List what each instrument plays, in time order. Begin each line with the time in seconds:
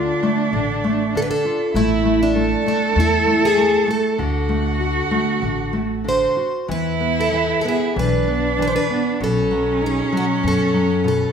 Already playing: nylon-string guitar D3 F4, cello D4
0.23 nylon-string guitar A3
0.53 upright bass A1, nylon-string guitar D3
0.84 nylon-string guitar A3
1.15 nylon-string guitar D3, twelve-string acoustic guitar A4
1.22 twelve-string acoustic guitar B4
1.31 twelve-string acoustic guitar A4
1.45 nylon-string guitar F4
1.74 upright bass A1, nylon-string guitar A3, cello E4, twelve-string acoustic guitar E4
2.05 nylon-string guitar A3
2.23 twelve-string acoustic guitar D4
2.36 nylon-string guitar A3, cello A4
2.66 nylon-string guitar A3, twelve-string acoustic guitar D4
2.96 upright bass E2, nylon-string guitar A3
3.00 twelve-string acoustic guitar E4
3.27 nylon-string guitar A3
3.45 twelve-string acoustic guitar G#4
3.57 nylon-string guitar A3
3.88 nylon-string guitar A3, twelve-string acoustic guitar A4
4.18 upright bass D2, nylon-string guitar D3, cello F#4
4.49 nylon-string guitar A3
4.80 nylon-string guitar F#4
5.11 nylon-string guitar A3
5.42 upright bass A1, nylon-string guitar D3
5.73 nylon-string guitar A3
6.04 nylon-string guitar D3
6.09 twelve-string acoustic guitar C5
6.37 nylon-string guitar F#4
6.68 upright bass E2, nylon-string guitar E3, cello E4, twelve-string acoustic guitar B4
7.00 nylon-string guitar B3
7.21 twelve-string acoustic guitar A4
7.32 nylon-string guitar E3
7.61 nylon-string guitar B3, twelve-string acoustic guitar A4
7.68 twelve-string acoustic guitar G#4
7.96 upright bass B1, nylon-string guitar E3, cello D4, twelve-string acoustic guitar B4
8.28 nylon-string guitar B3
8.58 nylon-string guitar E3
8.62 twelve-string acoustic guitar B4
8.68 twelve-string acoustic guitar C5
8.76 twelve-string acoustic guitar B4
8.90 nylon-string guitar B3
9.20 upright bass B1, nylon-string guitar B2, cello C#4, twelve-string acoustic guitar A4
9.51 nylon-string guitar F#3
9.82 nylon-string guitar D#4
9.86 twelve-string acoustic guitar G#4
10.12 nylon-string guitar F#3
10.17 twelve-string acoustic guitar F#4
10.43 upright bass F#2, nylon-string guitar B2
10.48 twelve-string acoustic guitar A4
10.74 nylon-string guitar F#3
11.04 nylon-string guitar B2
11.08 twelve-string acoustic guitar A4